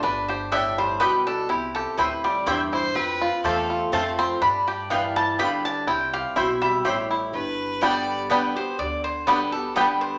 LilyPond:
<<
  \new Staff \with { instrumentName = "Mandolin" } { \time 3/4 \key g \mixolydian \tempo 4 = 123 b'8 c''8 e''8 c''8 b'8 a'8 | g'8 a'8 b'8 d''8 e''8 r8 | r2 a''8 c'''8 | b''8 d''8 f''8 a''8 b''8 a''8 |
g''8 f''8 e''8 e''4~ e''16 r16 | r2 b'8 c''8 | d''8 c''8 b'8 a'8 b'8 c''8 | }
  \new Staff \with { instrumentName = "Fiddle" } { \time 3/4 \key g \mixolydian r2. | r2 r8 c''8 | b'4 a'8. r4 r16 | r2. |
r2. | b'4 d''8. r4 r16 | r2. | }
  \new Staff \with { instrumentName = "Mandolin" } { \time 3/4 \key g \mixolydian r4 <b g' d'' g''>8 r8 <b g' d'' g''>8 r8 | r4 <c' e' c'' g''>8 r8 <c' e' c'' g''>8 r8 | r4 <c' f' c'' a''>8 r8 <c' f' c'' a''>8 r8 | r4 <b f' b' g''>8 r8 <b f' b' g''>8 r8 |
r4 <c' e' c'' g''>8 r8 <c' e' c'' g''>8 r8 | r4 <b g' d'' g''>8 r8 <b g' d'' g''>8 r8 | r4 <b g' d'' g''>8 r8 <b g' d'' g''>8 r8 | }
  \new Staff \with { instrumentName = "Five-string banjo" } { \time 3/4 \key g \mixolydian d'8 g'8 d'8 g8 g'8 d'8 | e'8 g'8 e'8 g8 g'8 e'8 | c'8 f'8 g'8 f'8 a8 c'8 | d'8 g'8 d'8 g8 g'8 d'8 |
e'8 g'8 e'8 g8 g'8 e'8 | r4 <g b d'>8 r8 <g b d'>8 r8 | r4 <g b d'>8 r8 <g b d'>8 r8 | }
  \new Staff \with { instrumentName = "Steel-string acoustic guitar" } { \clef bass \time 3/4 \key g \mixolydian << { r2. | r2. | r4 <a c' f'>4 <f a c' f'>4 | r2. |
r2. | r4 <d g b g'>4 <d g b g'>8 <b g'>8 | r4 <d g b g'>8 <b g'>8 <d g b g'>4 | } \\ { g,4 a,4 b,4 | c4 a,4 g,4 | f,2 r4 | g4 e4 d4 |
c4 b,4 a,4 | g,2 r4 | d2 r4 | } >> }
  \new Staff \with { instrumentName = "Upright bass" } { \clef bass \time 3/4 \key g \mixolydian g,,2. | c,4 d,4 e,4 | f,4 e,4 f,4 | g,2. |
c,4 b,,4 a,,4 | g,,2. | d,2. | }
>>